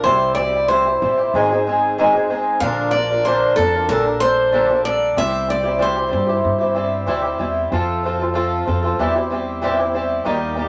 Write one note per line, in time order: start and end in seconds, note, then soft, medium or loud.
0.04 0.97 C2 medium
0.04 0.37 C3 medium
0.04 0.35 G3 medium
0.04 0.37 C4 medium
0.04 0.37 E4 medium
0.04 0.38 G4 medium
0.04 0.34 C5 medium
0.35 0.53 G3 soft
0.35 0.54 C4 medium
0.35 0.53 E4 medium
0.35 0.68 D5 medium
0.40 0.51 G4 medium
0.52 0.69 C4 soft
0.52 0.69 E4 soft
0.52 0.69 G4 soft
0.68 0.85 C3 medium
0.68 0.85 G3 medium
0.68 0.86 C4 medium
0.68 0.86 E4 medium
0.68 0.84 G4 medium
0.68 1.61 C5 medium
0.85 1.01 C4 soft
0.85 1.02 E4 soft
0.85 1.01 G4 soft
1.02 1.32 A1 medium
1.02 1.17 G3 soft
1.02 1.18 C4 medium
1.02 1.18 E4 medium
1.02 1.16 G4 medium
1.17 1.35 C4 soft
1.17 1.34 E4 soft
1.17 1.33 G4 soft
1.34 2.57 G#1 medium
1.34 1.50 G#2 medium
1.34 1.50 D#3 medium
1.34 1.50 G#3 medium
1.34 1.51 C4 medium
1.34 1.51 D#4 medium
1.34 1.49 G#4 medium
1.51 1.65 G#3 soft
1.51 1.66 C4 medium
1.51 1.67 D#4 soft
1.51 1.66 G#4 soft
1.66 1.98 G#3 medium
1.66 1.98 C4 medium
1.66 1.98 D#4 medium
1.66 1.98 G#4 medium
1.98 2.14 G#2 medium
1.98 2.14 D#3 medium
1.98 2.14 G#3 medium
1.98 2.14 C4 medium
1.98 2.13 D#4 medium
1.98 2.12 G#4 medium
2.13 2.29 G#3 soft
2.13 2.29 C4 soft
2.13 2.30 D#4 soft
2.13 2.29 G#4 soft
2.30 2.62 G#3 medium
2.30 2.62 C4 medium
2.30 2.62 D#4 medium
2.30 2.63 G#4 medium
2.60 3.53 A#1 medium
2.60 2.94 A#2 medium
2.60 2.94 D3 medium
2.60 2.93 F3 medium
2.60 2.94 A#3 medium
2.60 2.95 D4 medium
2.60 2.91 F5 medium
2.64 2.95 A#4 medium
2.91 3.10 F3 soft
2.91 3.10 A#3 medium
2.91 3.25 D5 medium
2.96 3.10 D4 medium
2.96 3.09 A#4 medium
3.10 3.25 F3 soft
3.10 3.26 A#3 soft
3.10 3.26 D4 soft
3.10 3.26 A#4 soft
3.25 3.57 A#2 medium
3.25 3.58 D3 medium
3.25 3.57 F3 medium
3.25 3.58 A#3 medium
3.25 3.58 D4 medium
3.25 3.58 A#4 medium
3.25 3.55 C5 medium
3.56 3.87 F2 medium
3.56 3.74 F3 soft
3.56 3.88 A4 medium
3.60 3.75 A#3 medium
3.60 3.74 D4 medium
3.60 3.73 A#4 medium
3.74 3.89 F3 soft
3.74 3.88 A#3 soft
3.74 3.89 D4 soft
3.74 3.90 A#4 soft
3.89 5.13 A#1 medium
3.89 4.05 A#2 medium
3.89 4.05 D3 medium
3.89 4.05 G3 medium
3.89 4.05 A#3 medium
3.89 4.06 D4 medium
3.89 4.04 A4 medium
3.89 4.19 A#4 medium
4.05 4.20 G3 soft
4.05 4.21 A#3 soft
4.05 4.22 D4 soft
4.05 4.21 A4 soft
4.20 4.53 G3 soft
4.20 4.52 A#3 medium
4.20 4.53 D4 soft
4.20 4.53 A4 medium
4.20 4.80 C5 medium
4.52 4.68 A#2 medium
4.52 4.69 D3 medium
4.52 4.69 G3 medium
4.52 4.69 A#3 medium
4.52 4.68 D4 medium
4.52 4.68 A4 medium
4.69 4.84 G3 soft
4.69 4.85 A#3 soft
4.69 4.85 D4 soft
4.69 4.85 A4 soft
4.85 5.16 G3 soft
4.85 5.17 A#3 medium
4.85 5.18 D4 medium
4.85 5.18 A4 medium
4.85 5.18 D5 medium
5.17 6.09 C2 medium
5.17 5.49 C3 medium
5.17 5.47 G3 medium
5.17 5.48 C4 medium
5.17 5.50 E4 medium
5.17 5.50 G4 medium
5.17 5.47 E5 medium
5.48 5.64 G3 medium
5.48 5.65 C4 medium
5.48 5.64 E4 medium
5.48 5.62 G4 medium
5.48 5.79 D5 medium
5.63 5.79 C4 soft
5.63 5.79 E4 soft
5.63 5.80 G4 soft
5.79 5.96 C3 medium
5.79 5.96 G3 medium
5.79 5.96 C4 medium
5.79 5.95 E4 medium
5.79 5.94 G4 medium
5.79 6.73 C5 medium
5.95 6.09 C4 soft
5.95 6.10 E4 soft
5.95 6.11 G4 soft
6.08 6.26 G3 medium
6.08 6.27 C4 medium
6.08 6.28 E4 medium
6.08 6.25 G4 medium
6.13 6.43 G2 medium
6.27 6.61 C4 soft
6.27 6.60 E4 soft
6.27 6.57 G4 soft
6.45 7.05 G2 medium
6.58 6.75 E4 soft
6.58 6.75 G4 medium
6.62 6.75 C4 soft
6.75 7.06 G3 medium
6.75 7.07 C4 medium
6.75 7.07 E4 medium
6.75 7.08 G4 medium
7.06 7.36 D2 medium
7.06 7.23 C3 medium
7.06 7.24 G3 medium
7.06 7.24 C4 medium
7.06 7.22 E4 medium
7.06 7.21 G4 medium
7.22 7.38 C4 soft
7.22 7.39 E4 soft
7.22 7.39 G4 soft
7.38 7.69 E2 medium
7.38 7.71 G3 medium
7.38 7.71 C4 medium
7.38 7.72 E4 medium
7.38 7.73 G4 medium
7.72 8.64 F2 medium
7.72 8.03 F3 medium
7.72 8.04 C4 medium
7.72 8.05 F4 medium
7.72 8.05 A4 medium
8.04 8.20 F3 medium
8.04 8.21 C4 medium
8.04 8.20 F4 medium
8.04 8.18 A4 medium
8.19 8.34 C4 soft
8.19 8.34 F4 soft
8.19 8.34 A4 soft
8.34 8.64 F3 medium
8.34 8.66 C4 medium
8.34 8.66 F4 medium
8.34 8.67 A4 medium
8.65 8.98 F2 medium
8.65 8.82 F3 medium
8.65 8.83 C4 medium
8.65 8.83 F4 medium
8.65 8.81 A4 medium
8.82 8.99 C4 soft
8.82 9.00 F4 soft
8.82 8.99 A4 medium
8.99 10.23 E2 medium
8.99 9.15 E3 medium
8.99 9.16 G3 medium
8.99 9.16 C4 medium
8.99 9.15 E4 medium
8.99 9.14 G4 medium
9.15 9.30 C4 soft
9.15 9.31 E4 soft
9.15 9.31 G4 medium
9.30 9.61 G3 medium
9.30 9.62 C4 medium
9.30 9.62 E4 medium
9.30 9.63 G4 medium
9.62 9.78 E3 medium
9.62 9.79 G3 medium
9.62 9.79 C4 medium
9.62 9.78 E4 medium
9.62 9.76 G4 medium
9.77 9.93 C4 soft
9.77 9.95 E4 soft
9.77 9.94 G4 medium
9.94 10.24 G3 medium
9.94 10.26 C4 medium
9.94 10.26 E4 medium
9.94 10.25 G4 medium
10.25 10.68 D#2 medium
10.25 10.58 D#3 medium
10.25 10.55 G3 medium
10.25 10.56 A#3 medium
10.25 10.57 D#4 medium
10.25 10.58 G4 medium
10.56 10.68 G3 medium
10.56 10.68 A#3 medium
10.56 10.68 D#4 medium
10.56 10.68 G4 medium